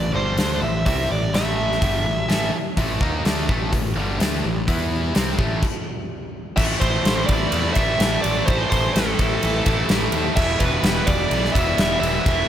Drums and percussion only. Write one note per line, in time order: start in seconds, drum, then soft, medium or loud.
0.38 snare loud
0.38 open hi-hat medium
0.86 kick medium
0.86 open hi-hat medium
1.34 snare loud
1.34 open hi-hat medium
1.72 snare soft
1.82 kick loud
1.82 open hi-hat medium
2.30 snare loud
2.30 open hi-hat soft
2.77 kick medium
2.77 open hi-hat soft
3.01 kick medium
3.25 snare loud
3.25 open hi-hat soft
3.49 kick loud
3.73 kick medium
3.73 open hi-hat medium
4.20 snare loud
4.20 open hi-hat medium
4.68 kick medium
4.68 open hi-hat medium
5.15 snare loud
5.15 open hi-hat medium
5.39 kick loud
5.62 kick loud
5.62 crash medium
6.57 kick loud
6.57 crash loud
6.82 kick medium
6.82 ride medium
7.05 snare loud
7.05 ride medium
7.29 kick loud
7.29 ride medium
7.52 ride loud
7.75 kick loud
7.75 ride medium
8.00 snare loud
8.00 ride loud
8.24 ride medium
8.48 kick loud
8.48 ride loud
8.72 kick medium
8.72 ride medium
8.96 snare loud
8.96 ride loud
9.19 kick medium
9.19 ride medium
9.43 ride loud
9.66 kick medium
9.66 ride medium
9.89 snare loud
9.89 ride loud
10.12 ride medium
10.36 kick loud
10.36 crash loud
10.60 kick medium
10.60 ride medium
10.83 snare loud
10.83 ride loud
11.07 kick loud
11.07 ride medium
11.31 ride loud
11.45 snare soft
11.55 kick loud
11.55 ride medium
11.78 snare loud
11.78 ride loud
12.03 ride medium
12.26 kick loud
12.26 ride loud